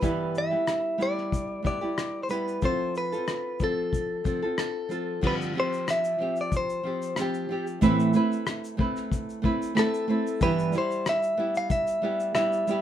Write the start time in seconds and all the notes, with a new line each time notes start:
Already playing: B4
0.01 G2 E3 G3 B3 E4 G4, kick, shaker
0.35 E5, shaker
0.51 G3 B3 E4 G4
0.67 cross-stick, shaker
0.98 G3 B3 E4 G4, shaker
1.03 D5
1.18 cross-stick
1.32 kick, shaker
1.63 G3 B3 E4 G4, kick, shaker
1.67 D5
1.81 G3 B3 E4 G4
1.98 cross-stick, shaker
2.23 C5
2.29 G3 B3 E4 G4 B4, shaker
2.48 shaker
2.62 F3 C4 F4 A4 C5, kick, shaker
2.95 B4, shaker
3.12 C4 F4 A4, shaker
3.28 cross-stick, shaker
3.60 F3 C4 F4 A4, kick, shaker
3.64 A4
3.93 kick, shaker
4.24 F3 C4 F4 A4, kick, shaker
4.42 C4 F4 A4
4.58 A4, cross-stick, shaker
4.89 F3 C4 F4 A4, shaker
5.21 G2 D3 F3 C4 F4 G4, kick, crash
5.27 B4
5.41 shaker
5.54 F3 C4 F4 G4
5.60 C5
5.73 shaker
5.88 E5, cross-stick, shaker
6.04 shaker
6.19 F3 C4 F4 G4
6.36 shaker
6.41 D5
6.52 kick, shaker
6.57 C5
6.70 shaker
6.83 F3 C4 F4 G4
7.02 shaker
7.16 F3 C4 F4 G4, cross-stick, shaker
7.22 G4
7.34 shaker
7.49 F3 C4 F4 G4
7.67 shaker
7.81 A2 E3 A3 C4 E4 B4, kick, shaker
8.00 shaker
8.13 A3 C4 E4 B4, shaker
8.32 shaker
8.47 cross-stick, shaker
8.64 shaker
8.77 A3 C4 E4 B4, kick
8.96 cross-stick, shaker
9.12 kick, shaker
9.30 shaker
9.42 A3 C4 E4 B4, kick
9.62 shaker
9.75 A3 C4 E4 B4, cross-stick, shaker
9.79 A4
9.94 shaker
10.08 A3 C4 E4 B4
10.27 shaker
10.41 G2 E3 G3 B3 E4 G4 B4, kick, shaker
10.59 shaker
10.72 G3 E4 G4, shaker
10.78 C5
10.91 shaker
11.06 E5, cross-stick, shaker
11.23 shaker
11.37 G3 B3 E4 G4
11.55 F5, shaker
11.70 E5, kick, shaker
11.87 shaker
12.02 G3 B3 E4 G4
12.20 shaker
12.34 G3 B3 E4 G4 E5, cross-stick, shaker
12.53 shaker
12.67 G3 B3 E4 G4, shaker